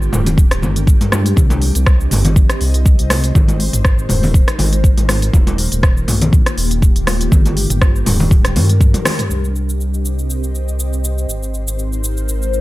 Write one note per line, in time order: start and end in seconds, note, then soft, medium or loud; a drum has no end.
0.00 1.35 G3 medium
0.00 1.35 D4 medium
0.00 3.31 G4 medium
0.00 1.35 A#4 medium
0.00 shaker medium
0.13 0.64 D1 loud
0.13 mid tom loud
0.13 high conga loud
0.13 shaker loud
0.26 closed hi-hat medium
0.26 low conga loud
0.26 shaker medium
0.38 kick loud
0.38 shaker medium
0.51 cross-stick medium
0.51 closed hi-hat soft
0.51 shaker medium
0.62 0.97 G1 loud
0.62 high conga loud
0.62 low conga medium
0.62 shaker medium
0.76 closed hi-hat medium
0.76 shaker medium
0.87 kick loud
0.87 shaker medium
1.01 1.34 G2 medium
1.01 closed hi-hat soft
1.01 high conga medium
1.01 shaker soft
1.12 cross-stick medium
1.12 high conga loud
1.12 shaker loud
1.26 closed hi-hat medium
1.26 shaker medium
1.36 1.72 C2 loud
1.36 3.33 C4 medium
1.36 5.30 C5 medium
1.36 3.33 D#5 medium
1.36 kick loud
1.36 low conga loud
1.36 shaker medium
1.50 closed hi-hat soft
1.50 high conga loud
1.50 shaker medium
1.62 open hi-hat medium
1.62 shaker medium
1.75 2.08 C2 medium
1.75 closed hi-hat medium
1.75 shaker medium
1.86 kick loud
1.86 cross-stick medium
1.86 shaker medium
2.01 shaker medium
2.11 2.46 G1 loud
2.11 mid tom loud
2.11 open hi-hat medium
2.11 high conga medium
2.11 shaker medium
2.25 closed hi-hat medium
2.25 low conga loud
2.25 shaker medium
2.36 kick loud
2.36 shaker medium
2.50 cross-stick medium
2.50 closed hi-hat soft
2.50 shaker soft
2.61 2.96 C2 loud
2.61 open hi-hat medium
2.61 shaker soft
2.74 closed hi-hat medium
2.74 shaker soft
2.86 kick loud
2.86 shaker medium
2.99 3.32 C2 medium
2.99 closed hi-hat soft
2.99 shaker medium
3.10 cross-stick medium
3.10 open hi-hat medium
3.10 high conga loud
3.10 shaker medium
3.24 closed hi-hat medium
3.24 shaker medium
3.35 3.70 G#1 loud
3.35 5.31 G#3 medium
3.35 5.31 D#4 medium
3.35 5.31 A#4 medium
3.35 kick loud
3.35 low conga loud
3.35 shaker medium
3.48 closed hi-hat soft
3.48 high conga loud
3.48 shaker medium
3.60 open hi-hat medium
3.60 shaker soft
3.73 4.07 G#1 medium
3.73 closed hi-hat medium
3.73 mid tom medium
3.73 shaker medium
3.85 kick loud
3.85 cross-stick medium
3.85 shaker medium
3.99 shaker medium
4.09 4.44 D#1 medium
4.09 mid tom medium
4.09 open hi-hat medium
4.09 high conga medium
4.09 shaker medium
4.23 open hi-hat medium
4.23 low conga loud
4.23 shaker medium
4.34 kick loud
4.34 shaker medium
4.48 cross-stick medium
4.48 closed hi-hat soft
4.48 shaker soft
4.59 4.94 G#1 loud
4.59 open hi-hat medium
4.59 high conga medium
4.59 low conga medium
4.59 shaker medium
4.73 closed hi-hat medium
4.73 shaker soft
4.84 kick loud
4.84 shaker medium
4.98 5.31 G#1 medium
4.98 closed hi-hat soft
4.98 high conga medium
4.98 shaker soft
5.09 cross-stick medium
5.09 open hi-hat medium
5.09 high conga medium
5.09 shaker medium
5.22 closed hi-hat medium
5.22 shaker soft
5.33 5.68 D#1 loud
5.33 7.30 D#3 medium
5.33 7.30 A#3 medium
5.33 7.30 F4 medium
5.33 9.26 G4 medium
5.33 kick loud
5.33 low conga loud
5.33 shaker medium
5.47 closed hi-hat soft
5.47 high conga loud
5.47 shaker medium
5.58 open hi-hat medium
5.58 shaker soft
5.72 6.05 D#1 medium
5.72 closed hi-hat medium
5.72 shaker medium
5.83 kick loud
5.83 cross-stick medium
5.83 shaker soft
5.97 shaker soft
6.08 6.43 A#1 medium
6.08 mid tom medium
6.08 open hi-hat loud
6.08 high conga loud
6.08 shaker medium
6.22 closed hi-hat medium
6.22 low conga loud
6.22 shaker soft
6.33 kick loud
6.33 shaker medium
6.46 cross-stick medium
6.46 closed hi-hat soft
6.46 shaker soft
6.58 6.92 D#1 loud
6.58 open hi-hat medium
6.58 shaker medium
6.71 closed hi-hat medium
6.71 shaker soft
6.82 kick loud
6.82 shaker medium
6.96 7.29 D#1 medium
6.96 closed hi-hat soft
6.96 shaker medium
7.07 cross-stick medium
7.07 open hi-hat loud
7.07 high conga medium
7.07 shaker medium
7.21 closed hi-hat medium
7.21 shaker medium
7.32 7.67 G1 loud
7.32 9.28 G3 medium
7.32 9.28 D4 medium
7.32 9.28 A#4 medium
7.32 kick loud
7.32 low conga loud
7.32 shaker medium
7.45 closed hi-hat soft
7.45 high conga loud
7.45 shaker medium
7.57 open hi-hat medium
7.57 shaker soft
7.70 8.03 G1 medium
7.70 closed hi-hat medium
7.70 mid tom medium
7.70 shaker medium
7.82 kick loud
7.82 cross-stick medium
7.82 shaker soft
7.96 shaker medium
8.06 8.57 D1 loud
8.06 mid tom medium
8.06 open hi-hat loud
8.06 high conga loud
8.06 shaker medium
8.20 open hi-hat medium
8.20 low conga loud
8.20 shaker medium
8.31 kick loud
8.31 high conga medium
8.31 shaker medium
8.45 cross-stick medium
8.45 closed hi-hat soft
8.45 shaker soft
8.56 8.96 G2 medium
8.56 open hi-hat medium
8.56 high conga medium
8.56 low conga medium
8.56 shaker medium
8.69 closed hi-hat medium
8.69 shaker medium
8.81 kick loud
8.81 high tom medium
8.81 shaker medium
8.94 9.04 G1 loud
8.94 closed hi-hat soft
8.94 high tom medium
8.94 high conga medium
8.94 shaker soft
9.05 cross-stick loud
9.05 open hi-hat loud
9.05 high conga loud
9.05 low conga medium
9.05 shaker medium
9.19 closed hi-hat medium
9.19 mid tom medium
9.19 shaker medium
9.30 11.26 C2 medium
9.30 11.27 C4 medium
9.30 11.27 G4 medium
9.30 11.27 C5 medium
9.30 11.27 D#5 medium
9.30 shaker medium
9.44 shaker soft
9.56 shaker soft
9.69 shaker medium
9.81 shaker soft
9.94 shaker soft
10.05 shaker medium
10.19 shaker soft
10.30 shaker medium
10.44 shaker soft
10.55 shaker medium
10.68 shaker soft
10.80 shaker medium
10.93 shaker soft
11.04 shaker medium
11.18 shaker soft
11.29 12.61 G#1 medium
11.29 12.61 G#3 medium
11.29 12.61 D#4 medium
11.29 12.61 A#4 medium
11.29 12.61 C5 medium
11.29 shaker medium
11.43 shaker soft
11.54 shaker soft
11.68 shaker medium
11.79 shaker medium
11.93 shaker soft
12.04 shaker medium
12.17 shaker medium
12.29 shaker medium
12.42 shaker soft
12.53 shaker soft